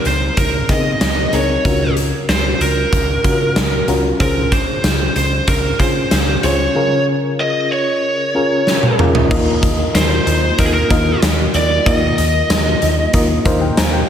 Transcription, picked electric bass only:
0, 0, Header, 1, 2, 480
1, 0, Start_track
1, 0, Tempo, 638298
1, 1240, Time_signature, 4, 2, 24, 8
1, 10596, End_track
2, 0, Start_track
2, 0, Title_t, "Picked electric bass"
2, 0, Program_c, 0, 34
2, 41, Note_on_c, 0, 37, 100
2, 214, Note_off_c, 0, 37, 0
2, 280, Note_on_c, 0, 37, 100
2, 453, Note_off_c, 0, 37, 0
2, 520, Note_on_c, 0, 49, 93
2, 693, Note_off_c, 0, 49, 0
2, 762, Note_on_c, 0, 37, 88
2, 934, Note_off_c, 0, 37, 0
2, 999, Note_on_c, 0, 37, 93
2, 1172, Note_off_c, 0, 37, 0
2, 1241, Note_on_c, 0, 37, 103
2, 1586, Note_off_c, 0, 37, 0
2, 1720, Note_on_c, 0, 37, 91
2, 1893, Note_off_c, 0, 37, 0
2, 1959, Note_on_c, 0, 37, 101
2, 2132, Note_off_c, 0, 37, 0
2, 2201, Note_on_c, 0, 37, 106
2, 2374, Note_off_c, 0, 37, 0
2, 2439, Note_on_c, 0, 49, 93
2, 2679, Note_on_c, 0, 37, 98
2, 2691, Note_off_c, 0, 49, 0
2, 2852, Note_off_c, 0, 37, 0
2, 2918, Note_on_c, 0, 37, 96
2, 3092, Note_off_c, 0, 37, 0
2, 3160, Note_on_c, 0, 37, 101
2, 3506, Note_off_c, 0, 37, 0
2, 3640, Note_on_c, 0, 37, 96
2, 3813, Note_off_c, 0, 37, 0
2, 3879, Note_on_c, 0, 37, 99
2, 4052, Note_off_c, 0, 37, 0
2, 4118, Note_on_c, 0, 37, 108
2, 4292, Note_off_c, 0, 37, 0
2, 4359, Note_on_c, 0, 49, 105
2, 4532, Note_off_c, 0, 49, 0
2, 4600, Note_on_c, 0, 37, 99
2, 4773, Note_off_c, 0, 37, 0
2, 4841, Note_on_c, 0, 37, 96
2, 5013, Note_off_c, 0, 37, 0
2, 7000, Note_on_c, 0, 39, 109
2, 7173, Note_off_c, 0, 39, 0
2, 7241, Note_on_c, 0, 39, 97
2, 7413, Note_off_c, 0, 39, 0
2, 7479, Note_on_c, 0, 39, 95
2, 7653, Note_off_c, 0, 39, 0
2, 7721, Note_on_c, 0, 39, 101
2, 7894, Note_off_c, 0, 39, 0
2, 7961, Note_on_c, 0, 39, 101
2, 8134, Note_off_c, 0, 39, 0
2, 8200, Note_on_c, 0, 39, 98
2, 8373, Note_off_c, 0, 39, 0
2, 8440, Note_on_c, 0, 39, 99
2, 8613, Note_off_c, 0, 39, 0
2, 8680, Note_on_c, 0, 39, 109
2, 8853, Note_off_c, 0, 39, 0
2, 8920, Note_on_c, 0, 39, 109
2, 9093, Note_off_c, 0, 39, 0
2, 9161, Note_on_c, 0, 39, 91
2, 9334, Note_off_c, 0, 39, 0
2, 9400, Note_on_c, 0, 39, 105
2, 9573, Note_off_c, 0, 39, 0
2, 9644, Note_on_c, 0, 39, 98
2, 9815, Note_off_c, 0, 39, 0
2, 9880, Note_on_c, 0, 39, 115
2, 10053, Note_off_c, 0, 39, 0
2, 10120, Note_on_c, 0, 39, 105
2, 10293, Note_off_c, 0, 39, 0
2, 10362, Note_on_c, 0, 39, 102
2, 10534, Note_off_c, 0, 39, 0
2, 10596, End_track
0, 0, End_of_file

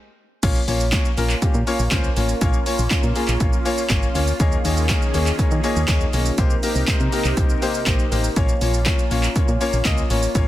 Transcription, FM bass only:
0, 0, Header, 1, 2, 480
1, 0, Start_track
1, 0, Tempo, 495868
1, 418, Time_signature, 4, 2, 24, 8
1, 10143, End_track
2, 0, Start_track
2, 0, Title_t, "FM bass"
2, 0, Program_c, 0, 39
2, 417, Note_on_c, 0, 34, 107
2, 587, Note_off_c, 0, 34, 0
2, 656, Note_on_c, 0, 34, 109
2, 911, Note_off_c, 0, 34, 0
2, 1137, Note_on_c, 0, 34, 88
2, 1307, Note_off_c, 0, 34, 0
2, 1377, Note_on_c, 0, 46, 49
2, 1425, Note_off_c, 0, 46, 0
2, 1496, Note_on_c, 0, 46, 108
2, 1582, Note_off_c, 0, 46, 0
2, 1737, Note_on_c, 0, 34, 89
2, 1822, Note_off_c, 0, 34, 0
2, 1854, Note_on_c, 0, 37, 87
2, 2025, Note_off_c, 0, 37, 0
2, 2098, Note_on_c, 0, 33, 93
2, 2268, Note_off_c, 0, 33, 0
2, 2338, Note_on_c, 0, 34, 110
2, 2508, Note_off_c, 0, 34, 0
2, 2699, Note_on_c, 0, 34, 95
2, 2783, Note_off_c, 0, 34, 0
2, 2818, Note_on_c, 0, 46, 50
2, 2866, Note_off_c, 0, 46, 0
2, 2939, Note_on_c, 0, 46, 101
2, 3024, Note_off_c, 0, 46, 0
2, 3181, Note_on_c, 0, 34, 88
2, 3265, Note_off_c, 0, 34, 0
2, 3297, Note_on_c, 0, 34, 94
2, 3467, Note_off_c, 0, 34, 0
2, 3775, Note_on_c, 0, 32, 92
2, 3946, Note_off_c, 0, 32, 0
2, 4018, Note_on_c, 0, 38, 84
2, 4188, Note_off_c, 0, 38, 0
2, 4259, Note_on_c, 0, 39, 112
2, 4428, Note_off_c, 0, 39, 0
2, 4499, Note_on_c, 0, 39, 106
2, 4753, Note_off_c, 0, 39, 0
2, 4978, Note_on_c, 0, 39, 93
2, 5148, Note_off_c, 0, 39, 0
2, 5216, Note_on_c, 0, 51, 48
2, 5265, Note_off_c, 0, 51, 0
2, 5340, Note_on_c, 0, 51, 107
2, 5424, Note_off_c, 0, 51, 0
2, 5580, Note_on_c, 0, 39, 95
2, 5664, Note_off_c, 0, 39, 0
2, 5695, Note_on_c, 0, 39, 99
2, 5866, Note_off_c, 0, 39, 0
2, 5939, Note_on_c, 0, 35, 96
2, 6108, Note_off_c, 0, 35, 0
2, 6177, Note_on_c, 0, 36, 116
2, 6347, Note_off_c, 0, 36, 0
2, 6537, Note_on_c, 0, 36, 92
2, 6622, Note_off_c, 0, 36, 0
2, 6776, Note_on_c, 0, 48, 91
2, 6862, Note_off_c, 0, 48, 0
2, 7019, Note_on_c, 0, 36, 89
2, 7103, Note_off_c, 0, 36, 0
2, 7136, Note_on_c, 0, 36, 106
2, 7307, Note_off_c, 0, 36, 0
2, 7616, Note_on_c, 0, 34, 89
2, 7786, Note_off_c, 0, 34, 0
2, 7859, Note_on_c, 0, 33, 92
2, 8028, Note_off_c, 0, 33, 0
2, 8098, Note_on_c, 0, 34, 106
2, 8267, Note_off_c, 0, 34, 0
2, 8340, Note_on_c, 0, 34, 109
2, 8594, Note_off_c, 0, 34, 0
2, 8819, Note_on_c, 0, 34, 88
2, 8988, Note_off_c, 0, 34, 0
2, 9058, Note_on_c, 0, 46, 47
2, 9106, Note_off_c, 0, 46, 0
2, 9182, Note_on_c, 0, 46, 102
2, 9265, Note_off_c, 0, 46, 0
2, 9421, Note_on_c, 0, 34, 92
2, 9505, Note_off_c, 0, 34, 0
2, 9538, Note_on_c, 0, 37, 92
2, 9707, Note_off_c, 0, 37, 0
2, 9780, Note_on_c, 0, 33, 92
2, 9949, Note_off_c, 0, 33, 0
2, 10020, Note_on_c, 0, 34, 115
2, 10143, Note_off_c, 0, 34, 0
2, 10143, End_track
0, 0, End_of_file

